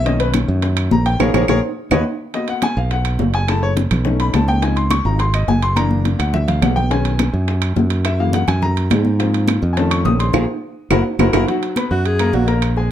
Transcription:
Already playing: fingered electric bass B1
0.05 grand piano D#3 A#3 C#4 D#5, high bongo, high conga, high timbale
0.20 grand piano B4, high bongo, high conga, high timbale
0.34 high bongo, high conga, high timbale, claves
0.48 fingered electric bass F#2, high bongo, high conga
0.62 high bongo, high conga, high timbale
0.77 high conga, high timbale, claves
0.91 fingered electric bass A#1, grand piano A#5, high bongo, low bongo, high conga
1.06 grand piano G5, high bongo, high conga, high timbale
1.20 fingered electric bass A#1, grand piano G#4 A#4 C#5, low bongo, high conga, high timbale, claves
1.34 fingered electric bass A#1, grand piano G#4 A#4 C#5, low bongo, high conga, high timbale, claves
1.48 fingered electric bass A#1, grand piano G#4 A#4 C#5, low bongo, high conga, high timbale, claves
1.91 fingered electric bass D#2, grand piano B4 C#5 D#5, low bongo, high conga, high timbale, claves
2.34 grand piano A#3 B3 F#4 D#5, high bongo, high conga, high timbale
2.48 grand piano F#5, high bongo, high conga, high timbale
2.62 grand piano G#5, high bongo, high conga, high timbale, claves
2.77 fingered electric bass B1, grand piano F5, high bongo, high conga
2.91 grand piano F#5, high bongo, high conga, high timbale
3.05 high conga, high timbale, claves
3.19 fingered electric bass F#1, high bongo, low bongo, high conga, low timbale
3.34 grand piano G#5, high bongo, high conga, high timbale
3.48 grand piano G#3 A3 E4 A5, high bongo, high conga, high timbale, claves
3.63 grand piano C#5, high bongo, high conga
3.77 high bongo, high conga, high timbale
3.91 fingered electric bass B1, high bongo, high conga, low conga, high timbale, claves
4.05 grand piano A3 C#4 D#4, high bongo, high conga, low conga
4.20 grand piano B5, high conga, high timbale
4.34 fingered electric bass C#2, grand piano A5, high bongo, low bongo, high conga, high timbale, claves
4.48 grand piano G5, high bongo, high conga
4.62 grand piano F3 C4 D#4 G#5, high bongo, high conga, high timbale
4.76 grand piano C6, high bongo, high conga, high timbale
4.91 grand piano C#6, high bongo, high conga, high timbale, claves
5.05 fingered electric bass G#1, grand piano F3 C4 D#4 A#5, high bongo, high conga
5.19 grand piano C6, high bongo, high conga, high timbale
5.34 grand piano D#5, high conga, high timbale, claves
5.48 fingered electric bass F#1, grand piano G#5, high bongo, low bongo, high conga
5.62 grand piano C6, high conga, high timbale
5.76 grand piano E3 A#3 D4 A#5, high bongo, high conga, high timbale, claves
5.91 high bongo, high conga
6.05 high bongo, high conga, high timbale
6.19 fingered electric bass D2, grand piano F#5, high bongo, high timbale, claves
6.34 grand piano E5, high bongo, low conga
6.48 grand piano F5, low conga, high timbale
6.62 fingered electric bass B1, grand piano F#5, high bongo, low bongo, low conga, high timbale, low timbale, claves
6.76 grand piano G5, high bongo, low conga
6.90 grand piano D#3 G#3 C#4 G#5, high bongo, high conga, high timbale
7.05 high bongo, high conga, high timbale
7.19 high bongo, high conga, high timbale, claves
7.33 fingered electric bass F#2, high bongo, high conga
7.48 high bongo, high conga, high timbale
7.62 high conga, high timbale, claves
7.76 fingered electric bass F#2, high bongo, low bongo, high conga
7.90 high bongo, high conga, high timbale
8.05 grand piano E5, high bongo, high timbale, claves
8.19 grand piano E3 G#3 A#3 F5, high bongo, high conga
8.33 grand piano F#5, high bongo, high conga, high timbale
8.48 fingered electric bass F#2, grand piano G#5, high bongo, high conga, low conga, high timbale, claves
8.62 grand piano A#5, high bongo, high conga, low conga
8.76 high conga, high timbale
8.90 fingered electric bass G#2, high bongo, low bongo, high conga, high timbale, low timbale, claves
9.05 high bongo, high conga
9.19 grand piano F3 A#3 C4, high bongo, high conga, high timbale
9.34 high bongo, high timbale
9.48 high bongo, high conga, high timbale, claves
9.62 fingered electric bass F2, high bongo, high conga
9.73 grand piano D#3 A3 G#5, high bongo, high conga
9.77 grand piano C#4 A5, high timbale
9.91 grand piano C#6, high conga, high timbale, claves
10.05 fingered electric bass A#1, grand piano D#6, high bongo, low bongo, high conga, low timbale
10.19 grand piano C6, high bongo, high conga, high timbale
10.33 fingered electric bass A#1, grand piano F4 G#4 A#4, low bongo, high conga, high timbale, claves
10.90 fingered electric bass F#1, grand piano E4 F#4 A#4, low bongo, high conga, high timbale, claves
11.19 fingered electric bass F#1, grand piano E4 F#4 A#4, low bongo, high conga, high timbale, claves
11.33 fingered electric bass F#1, grand piano E4 F#4 A#4, low bongo, high conga, high timbale, claves
11.47 grand piano F#3 F#4 F#5, high conga, high timbale
11.62 high conga, high timbale
11.76 grand piano B3 B4 B5, high conga, high timbale, claves
11.91 fingered electric bass F#2, grand piano F#4 F#5 F#6, alto saxophone F#4, high conga
12.05 alto saxophone G#4, high conga, high timbale
12.19 grand piano A#3 A#4 A#5, high conga, high timbale, claves
12.33 fingered electric bass A#1, alto saxophone F#4, high conga, low timbale
12.47 grand piano A#3 A#4 A#5, high conga, high timbale
12.62 high conga, high timbale, claves
12.77 grand piano G#3 G#4 G#5, high conga

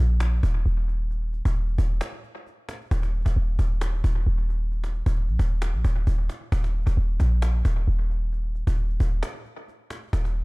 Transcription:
Already playing: 808-style bass A#1
0.20 cajon slap
0.43 808-style bass D#1, cajon bass
0.66 808-style bass D#1, cajon slap
0.89 cajon slap
1.11 cajon slap
1.33 cajon slap
1.45 808-style bass D#1, cajon bass
1.56 cajon slap
1.68 cajon slap
1.78 808-style bass D#1, cajon bass
2.01 cajon slap
2.23 cajon slap
2.46 cajon slap
2.69 cajon slap
2.75 cajon slap
2.81 cajon slap
2.86 cajon slap
2.91 808-style bass D#1, cajon bass
3.03 cajon slap
3.14 cajon slap
3.21 cajon slap
3.26 808-style bass D#1, cajon bass, cajon slap
3.36 808-style bass D#1, cajon slap
3.59 808-style bass D#1, cajon bass
3.81 cajon slap
4.04 808-style bass D#1, cajon bass
4.26 808-style bass D#1, cajon slap
4.50 cajon slap
4.72 cajon slap
4.84 cajon slap
4.94 cajon slap
5.06 808-style bass D#1, cajon bass
5.17 cajon slap
5.29 808-style bass A#1, cajon slap
5.39 808-style bass D#1, cajon bass
5.62 cajon slap
5.74 808-style bass A#1
5.84 808-style bass D#1, cajon bass
6.07 808-style bass D#1, cajon bass
6.29 cajon slap
6.52 808-style bass D#1, cajon bass
6.64 cajon slap
6.75 cajon slap
6.82 cajon slap
6.87 808-style bass D#1, cajon bass, cajon slap
6.97 808-style bass D#1, cajon slap
7.20 808-style bass A#1, cajon bass
7.42 cajon slap
7.65 808-style bass D#1, cajon bass
7.87 808-style bass D#1, cajon slap
8.11 cajon slap
8.33 cajon slap
8.55 cajon slap
8.67 808-style bass D#1, cajon bass
8.78 cajon slap
8.90 cajon slap
9.00 808-style bass D#1, cajon bass
9.23 cajon slap
9.45 cajon slap
9.68 cajon slap
9.90 cajon slap
9.96 cajon slap
10.02 cajon slap
10.08 cajon slap
10.13 808-style bass D#1, cajon bass
10.25 cajon slap

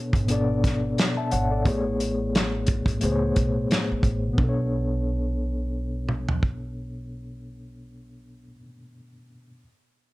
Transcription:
Already playing: reed electric piano B2 B3 D4 A4 C#5
0.13 upright bass G#1, kick, closed hi-hat
0.27 reed electric piano B2 B3 D4 A4, closed hi-hat
0.32 reed electric piano D5
0.64 kick, snare, closed hi-hat
0.98 snare, closed hi-hat
1.17 reed electric piano E5 A5
1.31 upright bass G#1, reed electric piano C#5 F#5, closed hi-hat
1.51 reed electric piano A4 D5
1.63 upright bass A1, reed electric piano A2 A3 B3 G#4, kick, closed hi-hat
1.68 reed electric piano C#5
2.00 closed hi-hat
2.35 snare, closed hi-hat
2.67 kick, closed hi-hat
2.86 upright bass A1, kick, closed hi-hat
3.00 upright bass C#2, reed electric piano A2 A3 B3 G#4, closed hi-hat
3.05 reed electric piano C5
3.11 reed electric piano C#5
3.36 upright bass B1, kick, closed hi-hat
3.71 snare, closed hi-hat
3.91 upright bass A1
4.03 upright bass A1, kick, closed hi-hat
4.28 reed electric piano B2
4.33 reed electric piano B3
4.38 upright bass B1, reed electric piano D4, kick
4.44 reed electric piano A4
4.49 reed electric piano C#5
6.09 mid tom
6.29 floor tom
6.43 kick

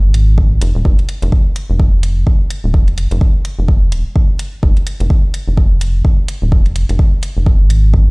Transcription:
0.04 analog synth bass G#1
0.14 closed hi-hat
0.38 kick
0.61 analog synth bass F1, closed hi-hat
0.75 analog synth bass D#1
0.85 analog synth bass F1, kick
0.99 closed hi-hat
1.09 closed hi-hat
1.22 analog synth bass F1, closed hi-hat
1.32 kick
1.56 closed hi-hat
1.70 analog synth bass F1
1.80 kick
2.03 closed hi-hat
2.27 kick
2.50 closed hi-hat
2.64 analog synth bass D#1
2.74 kick
2.88 analog synth bass F1, closed hi-hat
2.98 closed hi-hat
3.11 analog synth bass F1, closed hi-hat
3.21 kick
3.45 closed hi-hat
3.59 analog synth bass F1
3.68 kick
3.92 analog synth bass D#1, closed hi-hat
4.16 kick
4.39 closed hi-hat
4.63 analog synth bass F1, kick
4.77 closed hi-hat
4.87 closed hi-hat
5.00 analog synth bass F1, closed hi-hat
5.10 kick
5.34 closed hi-hat
5.48 analog synth bass F1
5.57 kick
5.81 closed hi-hat
6.05 kick
6.28 closed hi-hat
6.42 analog synth bass D#1
6.52 kick
6.66 analog synth bass F1, closed hi-hat
6.76 closed hi-hat
6.89 analog synth bass F1, closed hi-hat
6.99 kick
7.23 closed hi-hat
7.37 analog synth bass F1
7.46 kick
7.60 analog synth bass G#1
7.70 closed hi-hat
7.94 kick

